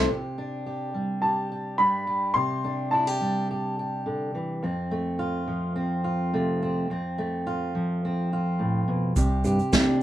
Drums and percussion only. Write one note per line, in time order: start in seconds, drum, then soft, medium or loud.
9.16 kick soft
9.16 shaker medium
9.44 shaker medium
9.59 shaker soft
9.73 kick soft
9.73 snare medium
9.73 shaker medium